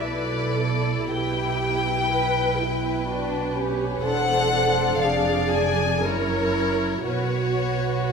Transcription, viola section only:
0.02 B4
0.55 A4
1.11 G4
2.12 B4
2.60 E4
3.08 F#4
3.56 G4
4.03 A4
5.02 G#4
6.02 A#4
7.08 F#4

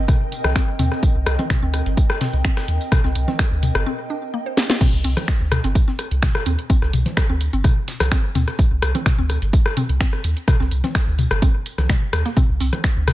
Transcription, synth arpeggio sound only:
0.56 C4
0.79 C4
1.39 C4
1.62 C4
2.21 C4
2.45 C4
3.04 C4
3.28 C4
3.86 C4
4.10 D4
4.34 A#3
4.46 C5
4.70 C4
4.81 C4
5.05 C4
5.64 C4
5.88 C4
6.46 C4
6.70 C4
7.30 C4
7.53 C4
8.12 C4
8.35 C4
8.95 C4
9.18 C4
9.77 C4
10.00 C4
10.60 C4
10.84 C4
11.42 C4
11.89 G3
12.26 A#3
12.37 C4
12.60 C4

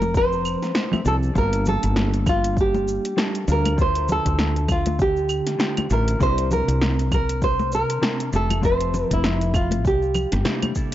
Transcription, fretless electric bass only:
Already playing: F1
1.06 C2
1.35 G1
1.84 G1
3.48 D2
4.26 D2
5.91 A1
6.20 C2
6.68 C2
8.33 F1
9.11 F1
9.84 C2
10.33 G1

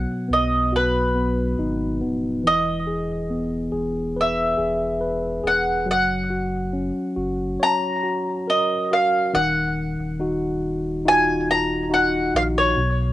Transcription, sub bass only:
0.30 B1
1.58 G#1
2.02 C#1
2.44 E1
3.73 E1
4.58 E1
5.44 E1
5.87 F#1
7.17 F#1
9.35 D#1
9.99 D#1
12.34 A#1
12.77 B1

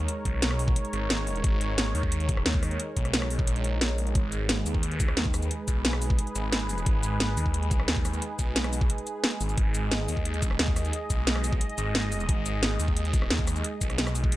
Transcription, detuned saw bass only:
0.25 B1
0.93 G#1
1.44 G#1
1.95 D#2
2.46 D#2
2.97 B1
3.47 A#1
4.15 G#1
4.66 D#2
5.17 D#2
5.68 B1
6.35 G#1
6.86 G#1
7.37 D#2
7.88 D#2
8.39 B1
9.41 G#1
9.57 G#1
10.08 D#2
10.59 D#2
11.10 B1
11.78 G#1
12.29 G#1
12.80 D#2
13.30 D#2
13.81 B1
14.32 A#1

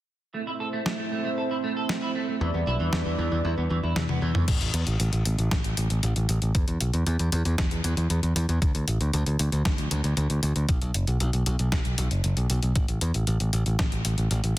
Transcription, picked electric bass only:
2.41 E2
2.54 E2
2.67 B1
2.80 E2
2.93 E2
3.06 E2
3.18 E2
3.32 E2
3.45 E2
3.58 E2
3.70 E2
3.83 E2
3.96 E2
4.09 E2
4.22 E2
4.35 E2
4.48 A1
4.61 A1
4.74 E2
4.87 A1
5.00 A1
5.13 A1
5.25 A1
5.38 A1
5.64 A1
5.77 A1
5.90 A1
6.03 A1
6.16 A1
6.29 A1
6.42 A1
6.55 E2
6.68 E2
6.81 B1
6.94 E2
7.07 E2
7.20 E2
7.32 E2
7.45 E2
7.58 E2
7.71 E2
7.84 E2
7.97 E2
8.10 E2
8.23 E2
8.36 E2
8.49 E2
8.62 D2
8.75 D2
8.88 A1
9.01 D2
9.14 D2
9.26 D2
9.39 D2
9.52 D2
9.78 D2
9.91 D2
10.04 D2
10.17 D2
10.30 D2
10.43 D2
10.56 D2
10.69 B1
10.82 B1
10.95 F#1
11.08 B1
11.20 B1
11.33 B1
11.46 B1
11.59 B1
11.85 B1
11.98 B1
12.11 F#1
12.24 F#1
12.37 B1
12.50 B1
12.63 B1
12.76 A1
12.89 A1
13.02 E2
13.14 A1
13.27 A1
13.40 A1
13.53 A1
13.66 A1
13.92 A1
14.05 A1
14.18 A1
14.31 A1
14.44 A1

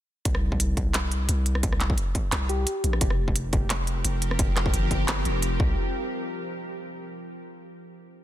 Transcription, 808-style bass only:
0.25 C2
1.29 C2
2.32 C2
2.84 A#1
3.01 F1
4.04 F1
4.74 G1
5.25 F1
5.60 C2

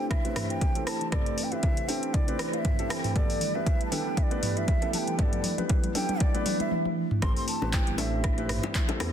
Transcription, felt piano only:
0.25 C4 G4 B4
0.75 C4 G4 A4
1.12 C4 G4 A4
1.52 C4 G4 B4
1.88 C4 G4 A4
2.28 C4 G4 B4
2.79 C4 G4 A4
3.16 B3 G4 A4
3.55 B3 G4 B4
3.92 B3 G4 A4
4.31 B3 G4 B4
4.82 B3 G4 A4
5.19 B3 G4 A4
5.58 B3 G4 B4
5.95 B3 G4 A4
6.34 B3 G4 B4
7.22 C4 G4 A4
7.62 C4 G4 B4
7.98 C4 G4 A4
8.38 C4 G4 B4
8.89 C4 G4 A4

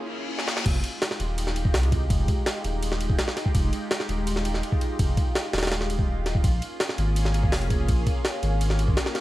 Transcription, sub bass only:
0.66 F1
1.20 D#1
1.74 C2
2.10 F1
2.64 D#1
3.55 F1
4.09 D#1
4.99 F1
5.54 D#1
6.08 D#1
6.44 A#1
6.98 G#1
7.52 F1
7.89 A#1
8.43 G#1

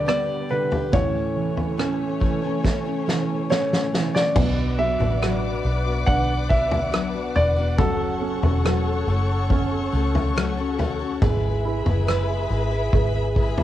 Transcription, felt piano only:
Already playing: G2 D3 B3 D4
0.07 B3
0.51 D3
0.92 A2
1.36 E3
1.79 C#4
2.21 E3
2.64 A3
3.07 E3
3.50 A3 C#5
3.93 E3
4.36 B2
4.79 F#3
5.22 F#4
6.08 D4
7.79 F#3
8.21 C#4
8.65 F#4
9.50 C#4
11.22 G#3
11.65 E4
12.08 B4
12.93 G#4

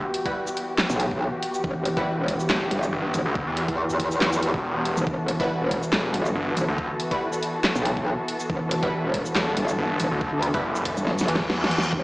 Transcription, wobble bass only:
0.90 B1
1.64 E1
2.07 E1
2.71 G1
3.14 E1
3.68 E2
3.90 E2
4.97 E1
5.07 E1
5.50 E1
6.14 G1
6.57 E1
7.76 B1
8.50 E1
8.93 E1
9.57 G1
10.00 E1
10.33 D2
10.97 G1
11.93 E1

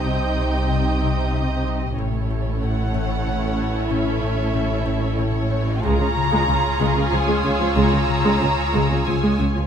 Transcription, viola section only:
Already playing: C4 D#4
1.97 C#4 E4
5.84 G#3 F4
6.00 C#3
6.32 G#3
6.48 C#3
6.80 G#3
6.96 C#3
7.11 F3
7.27 G#3
7.43 C#3
7.59 F3
7.75 G#3
7.92 C#3
8.24 G#3
8.40 C#3
8.73 G#3
8.90 C#3
9.06 F3
9.23 G#3
9.39 C#3
9.55 F3

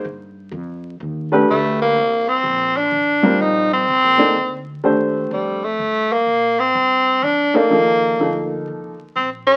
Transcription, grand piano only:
1.32 A3 D4 G4 B4
3.23 G3 C4 F4 A#4
4.18 A#3 D#4 A4 D5
4.84 A3 D4 G4 C5
7.54 A#3 D#4 A4 D5
7.70 F3 A#3 D#4 A4
8.19 F3 A#3 D#4 A4

